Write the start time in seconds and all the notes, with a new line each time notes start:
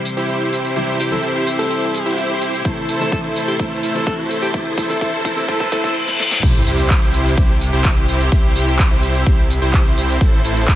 Already playing: C3 E3 G3 E4 C5, riser
0.05 open hi-hat, tambourine
0.17 E4 G4 C5, closed hi-hat, tambourine
0.29 closed hi-hat, tambourine
0.41 closed hi-hat
0.52 E4 G4 C5, open hi-hat, tambourine
0.64 closed hi-hat, tambourine
0.75 C3 E3 G3 E4 G4 C5, closed hi-hat, tambourine
0.88 closed hi-hat
1.00 E4 G4 C5, open hi-hat, tambourine
1.11 C3 E3 G3 E4 A4, closed hi-hat, tambourine
1.23 A4, closed hi-hat, tambourine
1.35 E4 G4 C5, closed hi-hat
1.47 open hi-hat, tambourine
1.59 A4, closed hi-hat, tambourine
1.71 E4 G4 C5, closed hi-hat, tambourine
1.82 closed hi-hat
1.94 open hi-hat, tambourine
2.06 E4 G4 C5, closed hi-hat, tambourine
2.18 closed hi-hat, tambourine
2.30 closed hi-hat
2.41 E4 G4 C5, open hi-hat, tambourine
2.53 closed hi-hat, tambourine
2.64 A2 C3 E3 A3 E4 A4 C5, kick, closed hi-hat, tambourine
2.77 closed hi-hat
2.89 E4 A4 C5, open hi-hat, tambourine
2.99 C3 E3 A3 E4 A4, closed hi-hat, tambourine
3.12 A4, kick, closed hi-hat, tambourine
3.24 E4 A4 C5, closed hi-hat
3.36 open hi-hat, tambourine
3.48 G4, closed hi-hat, tambourine
3.59 C3 E3 A3 E4 A4 C5, kick, closed hi-hat, tambourine
3.71 closed hi-hat
3.83 E4 A4 C5, open hi-hat, tambourine
3.94 C3 E3 A3 E4 A4, closed hi-hat, tambourine
4.07 A4, kick, closed hi-hat, tambourine
4.19 E4 A4 C5, closed hi-hat
4.30 open hi-hat, tambourine
4.42 G4, closed hi-hat, tambourine
4.53 C3 E3 A3 D4 E4 A4 C5, kick, closed hi-hat, tambourine
4.66 closed hi-hat
4.78 E4 A4 C5, kick, open hi-hat, tambourine
4.88 C3 E3 A3 E4 A4, closed hi-hat, tambourine
5.01 C3 E3 A3 E4 A4 C5, kick, closed hi-hat, tambourine
5.13 closed hi-hat
5.25 E4 A4 C5, kick, open hi-hat, tambourine
5.36 C3 E3 A3 E4 A4, closed hi-hat, tambourine
5.48 C3 E3 A3 E4 A4 C5, kick, closed hi-hat, tambourine, reverse cymbal
5.60 A4, kick, closed hi-hat
5.71 C3 E3 A3 E4 A4 C5, kick, open hi-hat, tambourine
5.84 A4, kick, closed hi-hat, tambourine
6.08 snare
6.19 snare
6.31 snare
6.43 C2 C3 C4 E4 G4 C5, kick, closed hi-hat, crash, tambourine, sub drop
6.55 closed hi-hat
6.67 C2 E4 G4 C5, open hi-hat, tambourine
6.78 closed hi-hat, tambourine
6.90 kick, clap, closed hi-hat, tambourine
7.02 C2 E4 G4 C5, closed hi-hat
7.14 open hi-hat, tambourine
7.26 closed hi-hat, tambourine
7.37 C2 E4 G4 C5, kick, closed hi-hat, tambourine
7.49 closed hi-hat
7.61 open hi-hat, tambourine
7.73 C2 E4 G4 C5, closed hi-hat, tambourine
7.85 kick, clap, closed hi-hat, tambourine
7.97 closed hi-hat
8.08 C2 E4 G4 C5, open hi-hat, tambourine
8.20 closed hi-hat, tambourine
8.32 C2 E4 G4 C5, kick, closed hi-hat, tambourine
8.44 closed hi-hat
8.56 C2 E4 G4 C5, open hi-hat, tambourine
8.67 closed hi-hat, tambourine
8.79 kick, clap, closed hi-hat, tambourine
8.91 C2 E4 G4 C5, closed hi-hat
9.03 open hi-hat, tambourine
9.15 closed hi-hat, tambourine
9.26 C2 E4 G4 C5, kick, closed hi-hat, tambourine
9.38 closed hi-hat
9.50 open hi-hat, tambourine
9.62 C2 E4 G4 C5, closed hi-hat, tambourine
9.74 kick, clap, closed hi-hat, tambourine
9.85 closed hi-hat
9.97 C2 E4 G4 C5, open hi-hat, tambourine
10.09 closed hi-hat, tambourine
10.21 A1 A3 E4 A4 C5, kick, closed hi-hat, tambourine
10.33 closed hi-hat
10.44 A1 E4 A4 C5, open hi-hat, tambourine
10.56 closed hi-hat, tambourine
10.68 kick, clap, closed hi-hat, tambourine